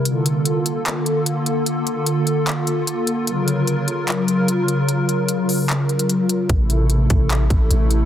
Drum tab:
HH |x-x-x-x-x-x-x-x-|x-x-x-x-x-x-x-x-|x-x-x-x-x-x-x-x-|x-x-x-o-x-xxx-x-|
CP |--------x-------|--------x-------|--------x-------|--------x-------|
BD |----------------|----------------|----------------|----------------|

HH |x-x-x-x-x-x-x-x-|
CP |--------x-------|
BD |o-----o---o-----|